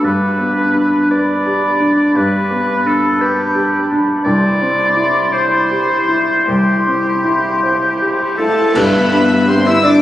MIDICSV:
0, 0, Header, 1, 12, 480
1, 0, Start_track
1, 0, Key_signature, 1, "major"
1, 0, Tempo, 704225
1, 27, Time_signature, 6, 3, 24, 8
1, 3386, Tempo, 759494
1, 5786, Tempo, 728155
1, 6613, End_track
2, 0, Start_track
2, 0, Title_t, "Violin section"
2, 0, Program_c, 0, 48
2, 5546, Note_on_c, 0, 81, 64
2, 5767, Note_off_c, 0, 81, 0
2, 5789, Note_on_c, 0, 83, 82
2, 6261, Note_on_c, 0, 84, 87
2, 6268, Note_off_c, 0, 83, 0
2, 6384, Note_off_c, 0, 84, 0
2, 6396, Note_on_c, 0, 88, 94
2, 6511, Note_off_c, 0, 88, 0
2, 6512, Note_on_c, 0, 86, 95
2, 6613, Note_off_c, 0, 86, 0
2, 6613, End_track
3, 0, Start_track
3, 0, Title_t, "Violin section"
3, 0, Program_c, 1, 48
3, 5777, Note_on_c, 1, 76, 87
3, 6475, Note_off_c, 1, 76, 0
3, 6491, Note_on_c, 1, 74, 68
3, 6613, Note_off_c, 1, 74, 0
3, 6613, End_track
4, 0, Start_track
4, 0, Title_t, "Flute section"
4, 0, Program_c, 2, 73
4, 29, Note_on_c, 2, 83, 49
4, 2873, Note_off_c, 2, 83, 0
4, 2902, Note_on_c, 2, 84, 64
4, 5394, Note_off_c, 2, 84, 0
4, 5542, Note_on_c, 2, 69, 58
4, 5764, Note_on_c, 2, 71, 71
4, 5765, Note_off_c, 2, 69, 0
4, 6249, Note_on_c, 2, 72, 76
4, 6255, Note_off_c, 2, 71, 0
4, 6371, Note_on_c, 2, 76, 84
4, 6378, Note_off_c, 2, 72, 0
4, 6492, Note_on_c, 2, 74, 93
4, 6498, Note_off_c, 2, 76, 0
4, 6613, Note_off_c, 2, 74, 0
4, 6613, End_track
5, 0, Start_track
5, 0, Title_t, "Oboe"
5, 0, Program_c, 3, 68
5, 31, Note_on_c, 3, 71, 57
5, 753, Note_off_c, 3, 71, 0
5, 757, Note_on_c, 3, 74, 69
5, 1474, Note_on_c, 3, 71, 70
5, 1484, Note_off_c, 3, 74, 0
5, 1956, Note_on_c, 3, 69, 75
5, 1967, Note_off_c, 3, 71, 0
5, 2193, Note_on_c, 3, 67, 72
5, 2203, Note_off_c, 3, 69, 0
5, 2662, Note_off_c, 3, 67, 0
5, 2892, Note_on_c, 3, 74, 102
5, 3614, Note_on_c, 3, 72, 77
5, 3623, Note_off_c, 3, 74, 0
5, 4326, Note_off_c, 3, 72, 0
5, 4329, Note_on_c, 3, 67, 63
5, 5522, Note_off_c, 3, 67, 0
5, 5540, Note_on_c, 3, 69, 59
5, 5782, Note_on_c, 3, 71, 76
5, 5792, Note_off_c, 3, 69, 0
5, 6267, Note_on_c, 3, 72, 83
5, 6277, Note_off_c, 3, 71, 0
5, 6381, Note_on_c, 3, 76, 84
5, 6391, Note_off_c, 3, 72, 0
5, 6499, Note_on_c, 3, 74, 101
5, 6509, Note_off_c, 3, 76, 0
5, 6613, Note_off_c, 3, 74, 0
5, 6613, End_track
6, 0, Start_track
6, 0, Title_t, "Viola section"
6, 0, Program_c, 4, 48
6, 5779, Note_on_c, 4, 62, 64
6, 5779, Note_on_c, 4, 67, 65
6, 5894, Note_off_c, 4, 62, 0
6, 5894, Note_off_c, 4, 67, 0
6, 5898, Note_on_c, 4, 71, 55
6, 5899, Note_on_c, 4, 59, 57
6, 6015, Note_on_c, 4, 62, 60
6, 6016, Note_on_c, 4, 67, 62
6, 6022, Note_off_c, 4, 71, 0
6, 6023, Note_off_c, 4, 59, 0
6, 6140, Note_on_c, 4, 71, 58
6, 6141, Note_off_c, 4, 62, 0
6, 6141, Note_off_c, 4, 67, 0
6, 6143, Note_on_c, 4, 59, 58
6, 6259, Note_on_c, 4, 62, 61
6, 6262, Note_on_c, 4, 67, 59
6, 6263, Note_off_c, 4, 71, 0
6, 6265, Note_off_c, 4, 59, 0
6, 6374, Note_off_c, 4, 62, 0
6, 6375, Note_off_c, 4, 67, 0
6, 6381, Note_on_c, 4, 71, 58
6, 6384, Note_on_c, 4, 59, 61
6, 6503, Note_off_c, 4, 71, 0
6, 6504, Note_off_c, 4, 59, 0
6, 6508, Note_on_c, 4, 62, 72
6, 6508, Note_on_c, 4, 67, 70
6, 6613, Note_off_c, 4, 62, 0
6, 6613, Note_off_c, 4, 67, 0
6, 6613, End_track
7, 0, Start_track
7, 0, Title_t, "Clarinet"
7, 0, Program_c, 5, 71
7, 38, Note_on_c, 5, 62, 45
7, 2878, Note_off_c, 5, 62, 0
7, 2905, Note_on_c, 5, 64, 63
7, 5551, Note_off_c, 5, 64, 0
7, 6613, End_track
8, 0, Start_track
8, 0, Title_t, "Felt piano"
8, 0, Program_c, 6, 0
8, 0, Control_c, 6, 64, 127
8, 17, Note_on_c, 6, 43, 41
8, 40, Control_c, 6, 64, 0
8, 159, Control_c, 6, 64, 127
8, 260, Note_on_c, 6, 59, 32
8, 503, Note_on_c, 6, 62, 29
8, 657, Note_off_c, 6, 59, 0
8, 753, Note_on_c, 6, 71, 34
8, 896, Note_off_c, 6, 62, 0
8, 992, Note_on_c, 6, 67, 36
8, 1138, Note_off_c, 6, 71, 0
8, 1227, Note_on_c, 6, 62, 42
8, 1377, Note_off_c, 6, 67, 0
8, 1444, Note_off_c, 6, 43, 0
8, 1464, Note_on_c, 6, 43, 48
8, 1488, Control_c, 6, 64, 0
8, 1616, Note_off_c, 6, 62, 0
8, 1621, Control_c, 6, 64, 127
8, 1707, Note_on_c, 6, 59, 41
8, 1942, Note_on_c, 6, 62, 39
8, 2092, Note_off_c, 6, 59, 0
8, 2185, Note_on_c, 6, 71, 44
8, 2323, Note_off_c, 6, 62, 0
8, 2419, Note_on_c, 6, 67, 46
8, 2563, Note_off_c, 6, 71, 0
8, 2662, Note_on_c, 6, 62, 49
8, 2802, Note_off_c, 6, 67, 0
8, 2866, Note_off_c, 6, 43, 0
8, 2899, Note_on_c, 6, 36, 54
8, 2900, Note_off_c, 6, 62, 0
8, 2912, Control_c, 6, 64, 0
8, 3021, Control_c, 6, 64, 127
8, 3141, Note_on_c, 6, 60, 41
8, 3384, Note_on_c, 6, 64, 41
8, 3525, Note_off_c, 6, 60, 0
8, 3620, Note_on_c, 6, 72, 45
8, 3757, Note_off_c, 6, 64, 0
8, 3853, Note_on_c, 6, 67, 44
8, 3995, Note_off_c, 6, 72, 0
8, 4090, Note_on_c, 6, 64, 40
8, 4236, Note_off_c, 6, 67, 0
8, 4308, Note_off_c, 6, 36, 0
8, 4339, Note_on_c, 6, 36, 45
8, 4347, Control_c, 6, 64, 0
8, 4472, Control_c, 6, 64, 127
8, 4482, Note_off_c, 6, 64, 0
8, 4586, Note_on_c, 6, 60, 32
8, 4826, Note_on_c, 6, 64, 30
8, 4971, Note_off_c, 6, 60, 0
8, 5066, Note_on_c, 6, 72, 31
8, 5211, Note_off_c, 6, 64, 0
8, 5308, Note_on_c, 6, 67, 31
8, 5453, Note_off_c, 6, 72, 0
8, 5550, Note_on_c, 6, 64, 37
8, 5693, Note_off_c, 6, 67, 0
8, 5762, Note_off_c, 6, 36, 0
8, 5786, Note_off_c, 6, 64, 0
8, 5786, Note_on_c, 6, 43, 60
8, 5798, Control_c, 6, 64, 0
8, 5903, Control_c, 6, 64, 127
8, 6017, Note_on_c, 6, 62, 49
8, 6254, Note_on_c, 6, 67, 53
8, 6406, Note_off_c, 6, 62, 0
8, 6492, Note_on_c, 6, 74, 59
8, 6613, Note_off_c, 6, 43, 0
8, 6613, Note_off_c, 6, 67, 0
8, 6613, Note_off_c, 6, 74, 0
8, 6613, End_track
9, 0, Start_track
9, 0, Title_t, "Cello section"
9, 0, Program_c, 7, 48
9, 5544, Note_on_c, 7, 57, 56
9, 5766, Note_off_c, 7, 57, 0
9, 5779, Note_on_c, 7, 59, 69
9, 6263, Note_off_c, 7, 59, 0
9, 6272, Note_on_c, 7, 60, 79
9, 6383, Note_on_c, 7, 64, 86
9, 6386, Note_off_c, 7, 60, 0
9, 6504, Note_off_c, 7, 64, 0
9, 6509, Note_on_c, 7, 62, 95
9, 6613, Note_off_c, 7, 62, 0
9, 6613, End_track
10, 0, Start_track
10, 0, Title_t, "French horn section"
10, 0, Program_c, 8, 60
10, 5549, Note_on_c, 8, 57, 59
10, 5769, Note_off_c, 8, 57, 0
10, 5774, Note_on_c, 8, 59, 69
10, 6260, Note_off_c, 8, 59, 0
10, 6267, Note_on_c, 8, 60, 81
10, 6377, Note_on_c, 8, 64, 78
10, 6387, Note_off_c, 8, 60, 0
10, 6498, Note_on_c, 8, 62, 97
10, 6501, Note_off_c, 8, 64, 0
10, 6613, Note_off_c, 8, 62, 0
10, 6613, End_track
11, 0, Start_track
11, 0, Title_t, "Double bass section"
11, 0, Program_c, 10, 48
11, 5785, Note_on_c, 10, 31, 68
11, 6613, Note_off_c, 10, 31, 0
11, 6613, End_track
12, 0, Start_track
12, 0, Title_t, "Drums"
12, 5779, Note_on_c, 9, 35, 78
12, 5779, Note_on_c, 9, 49, 76
12, 5844, Note_off_c, 9, 35, 0
12, 5844, Note_off_c, 9, 49, 0
12, 6613, End_track
0, 0, End_of_file